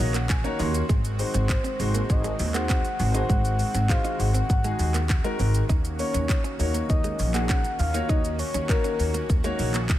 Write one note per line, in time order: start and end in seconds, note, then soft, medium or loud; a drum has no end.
0.00 0.41 A#1 medium
0.00 9.99 D#3 medium
0.00 0.15 A#3 medium
0.00 0.85 A#3 medium
0.00 0.85 C#4 medium
0.00 0.15 D#4 medium
0.00 0.15 F#4 medium
0.00 3.25 F#4 medium
0.00 0.15 C#5 loud
0.00 0.13 D#5 medium
0.14 0.25 A#3 medium
0.14 0.28 F#5 medium
0.14 clap medium
0.14 closed hi-hat medium
0.14 shaker medium
0.29 0.43 G#5 medium
0.29 muted clean electric guitar stroke soft
0.29 kick loud
0.29 clap loud
0.29 shaker medium
0.44 0.82 A#3 medium
0.44 0.55 C#4 medium
0.44 0.82 D#4 medium
0.44 0.82 F#4 medium
0.44 0.82 C#5 loud
0.44 0.58 A#5 medium
0.44 closed hi-hat soft
0.44 shaker soft
0.59 0.80 D#2 loud
0.59 0.70 D#4 medium
0.59 0.87 C6 medium
0.59 open hi-hat medium
0.59 shaker soft
0.74 closed hi-hat medium
0.74 shaker medium
0.89 1.21 G#1 medium
0.89 1.00 G#3 medium
0.89 5.65 G#3 medium
0.89 5.65 C4 medium
0.89 kick loud
0.89 shaker medium
1.05 closed hi-hat medium
1.05 shaker medium
1.19 1.49 G#3 medium
1.19 1.50 D#4 medium
1.19 1.50 F#4 medium
1.19 1.50 C5 medium
1.19 2.11 C5 loud
1.19 muted clean electric guitar stroke soft
1.19 open hi-hat medium
1.19 shaker medium
1.34 1.55 G#1 medium
1.34 1.45 C4 medium
1.34 closed hi-hat medium
1.34 shaker medium
1.49 kick loud
1.49 clap loud
1.49 shaker medium
1.64 1.75 C4 medium
1.64 closed hi-hat soft
1.64 shaker soft
1.79 2.00 G#1 medium
1.79 2.17 G#3 medium
1.79 2.17 D#4 medium
1.79 2.17 F#4 medium
1.79 2.17 C5 medium
1.79 muted clean electric guitar stroke soft
1.79 open hi-hat medium
1.79 shaker medium
1.94 2.05 A#3 medium
1.94 closed hi-hat medium
1.94 shaker medium
2.10 2.30 G#1 loud
2.10 2.54 D#5 loud
2.10 kick loud
2.10 shaker medium
2.24 2.35 G#3 medium
2.24 closed hi-hat medium
2.24 shaker medium
2.39 2.81 D#2 loud
2.39 muted clean electric guitar stroke soft
2.39 open hi-hat medium
2.39 shaker medium
2.54 2.85 G#3 medium
2.54 2.65 A#3 medium
2.54 2.85 D#4 medium
2.54 2.85 F#4 medium
2.54 2.85 C5 medium
2.54 3.25 F#5 loud
2.54 clap medium
2.54 closed hi-hat medium
2.54 shaker medium
2.69 2.80 C4 medium
2.69 kick loud
2.69 clap loud
2.69 shaker medium
2.84 muted clean electric guitar stroke soft
2.84 closed hi-hat soft
2.84 shaker soft
2.99 3.20 G#1 loud
2.99 open hi-hat medium
2.99 shaker soft
3.14 3.52 G#3 medium
3.14 3.52 D#4 medium
3.14 3.25 D#4 medium
3.14 3.52 F#4 medium
3.14 3.52 C5 medium
3.14 closed hi-hat medium
3.14 shaker medium
3.29 3.61 G#1 loud
3.29 3.40 G#3 medium
3.29 5.67 F#4 medium
3.29 3.91 F#5 loud
3.29 kick loud
3.29 shaker medium
3.45 closed hi-hat medium
3.45 shaker medium
3.59 muted clean electric guitar stroke soft
3.59 open hi-hat medium
3.59 shaker medium
3.75 3.95 G#1 medium
3.75 3.85 C4 medium
3.75 closed hi-hat medium
3.75 shaker medium
3.89 4.27 G#3 medium
3.89 4.27 D#4 medium
3.89 4.27 F#4 medium
3.89 4.27 C5 medium
3.89 4.21 F5 loud
3.89 kick loud
3.89 clap loud
3.89 shaker medium
4.04 4.15 D#4 medium
4.04 closed hi-hat soft
4.04 shaker soft
4.19 4.40 G#1 medium
4.19 5.39 F#5 loud
4.19 muted clean electric guitar stroke soft
4.19 open hi-hat medium
4.19 shaker medium
4.34 4.45 C4 medium
4.34 closed hi-hat medium
4.34 shaker medium
4.50 4.70 G#1 medium
4.50 kick loud
4.50 shaker medium
4.64 4.95 G#3 medium
4.64 4.75 G#3 medium
4.64 4.95 D#4 medium
4.64 4.95 F#4 medium
4.64 4.95 G#4 medium
4.64 closed hi-hat medium
4.64 shaker medium
4.79 5.21 D#2 loud
4.79 muted clean electric guitar stroke soft
4.79 open hi-hat medium
4.79 shaker medium
4.94 5.05 A#3 medium
4.94 clap medium
4.94 closed hi-hat medium
4.94 shaker medium
5.09 muted clean electric guitar stroke soft
5.09 kick loud
5.09 clap loud
5.09 shaker medium
5.24 5.62 G#3 medium
5.24 5.35 G#3 medium
5.24 5.62 D#4 medium
5.24 5.62 F#4 medium
5.24 5.62 A#4 loud
5.24 closed hi-hat soft
5.24 shaker soft
5.39 5.60 G#1 medium
5.39 5.50 C4 medium
5.39 open hi-hat medium
5.39 shaker soft
5.55 closed hi-hat medium
5.55 shaker medium
5.69 6.01 D#2 loud
5.69 9.99 A#3 medium
5.69 9.99 C#4 medium
5.69 5.80 D#4 medium
5.69 9.99 F#4 medium
5.69 kick loud
5.69 shaker medium
5.85 closed hi-hat medium
5.85 shaker medium
5.99 6.30 A#3 medium
5.99 6.30 D#4 medium
5.99 6.30 F#4 medium
5.99 6.55 C#5 loud
5.99 6.30 C#5 medium
5.99 muted clean electric guitar stroke soft
5.99 open hi-hat medium
5.99 shaker soft
6.14 6.35 D#2 medium
6.14 6.25 C#4 medium
6.14 closed hi-hat medium
6.14 shaker medium
6.29 kick loud
6.29 clap loud
6.29 shaker medium
6.44 6.55 C#4 medium
6.44 closed hi-hat soft
6.44 shaker soft
6.59 6.80 D#2 medium
6.59 6.97 A#3 medium
6.59 6.97 D#4 medium
6.59 6.97 F#4 medium
6.59 6.97 C#5 medium
6.59 muted clean electric guitar stroke soft
6.59 open hi-hat medium
6.59 shaker medium
6.74 6.85 A#3 medium
6.74 closed hi-hat medium
6.74 shaker medium
6.89 7.10 D#2 loud
6.89 7.31 D#5 loud
6.89 kick loud
6.89 shaker medium
7.04 7.15 G#3 medium
7.04 closed hi-hat medium
7.04 shaker medium
7.19 7.61 A#1 loud
7.19 muted clean electric guitar stroke soft
7.19 open hi-hat medium
7.19 shaker medium
7.34 7.64 A#3 medium
7.34 7.45 A#3 medium
7.34 7.65 D#4 medium
7.34 7.65 F#4 medium
7.34 7.65 G#4 medium
7.34 7.41 F#5 loud
7.34 clap medium
7.34 closed hi-hat medium
7.34 shaker medium
7.49 7.60 C#4 medium
7.49 7.77 F#5 loud
7.49 kick loud
7.49 clap loud
7.49 shaker medium
7.64 muted clean electric guitar stroke soft
7.64 closed hi-hat soft
7.64 shaker soft
7.79 8.00 D#2 loud
7.79 8.11 F5 loud
7.79 open hi-hat medium
7.79 shaker soft
7.94 8.32 A#3 medium
7.94 8.05 D#4 medium
7.94 8.32 D#4 medium
7.94 8.32 F#4 medium
7.94 8.32 C#5 medium
7.94 closed hi-hat medium
7.94 shaker medium
8.09 8.41 D#2 medium
8.09 8.20 D#4 medium
8.09 8.39 D#5 loud
8.09 kick loud
8.09 shaker medium
8.25 closed hi-hat medium
8.25 shaker medium
8.39 8.71 C#5 medium
8.39 muted clean electric guitar stroke soft
8.39 open hi-hat medium
8.39 shaker soft
8.54 8.75 D#2 medium
8.54 8.65 C#4 medium
8.54 closed hi-hat medium
8.54 shaker medium
8.69 9.07 A#3 medium
8.69 9.07 D#4 medium
8.69 9.07 F#4 medium
8.69 9.29 A#4 medium
8.69 9.07 C#5 medium
8.69 kick loud
8.69 clap loud
8.69 shaker medium
8.84 8.95 C#4 medium
8.84 closed hi-hat soft
8.84 shaker medium
8.99 9.20 D#2 medium
8.99 muted clean electric guitar stroke soft
8.99 open hi-hat medium
8.99 shaker medium
9.14 9.25 A#3 medium
9.14 closed hi-hat medium
9.14 shaker medium
9.30 9.50 D#2 medium
9.30 kick loud
9.30 shaker medium
9.44 9.55 G#3 medium
9.44 9.74 A#3 medium
9.44 9.75 D#4 medium
9.44 9.75 F#4 medium
9.44 9.75 C#5 loud
9.44 closed hi-hat medium
9.44 shaker medium
9.59 9.99 A#1 loud
9.59 muted clean electric guitar stroke soft
9.59 open hi-hat medium
9.59 shaker medium
9.74 9.85 A#3 medium
9.74 clap medium
9.74 closed hi-hat medium
9.74 shaker medium
9.89 muted clean electric guitar stroke soft
9.89 kick loud
9.89 clap loud
9.89 shaker medium